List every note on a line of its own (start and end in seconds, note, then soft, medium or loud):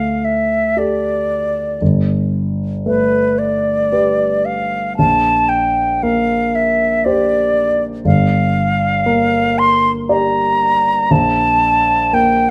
0.00 1.77 D2 soft
0.00 1.39 A3 soft
0.00 0.26 F5 soft
0.25 0.80 E5 soft
0.77 1.77 G4 soft
0.77 1.77 A4 soft
0.77 1.82 D5 soft
1.81 4.94 G1 soft
2.86 4.56 A3 soft
2.86 3.40 B4 soft
3.39 4.47 D5 soft
3.92 4.94 G4 soft
3.92 4.94 B4 soft
4.45 4.97 F5 medium
4.97 8.02 A#1 soft
4.97 5.50 A5 medium
5.49 6.04 G5 soft
6.03 7.66 A#3 soft
6.03 6.57 F5 medium
6.55 7.06 E5 medium
7.05 8.02 G4 soft
7.05 8.02 C5 soft
7.05 7.83 D5 medium
8.05 11.06 G1 soft
8.05 9.60 F5 medium
9.06 10.69 A#3 soft
9.59 9.91 C6 medium
10.09 11.07 G4 soft
10.09 11.07 D5 soft
10.09 11.13 A#5 medium
11.11 12.51 A#1 soft
11.11 12.15 A5 medium
12.13 12.51 A#3 soft
12.13 12.51 G5 medium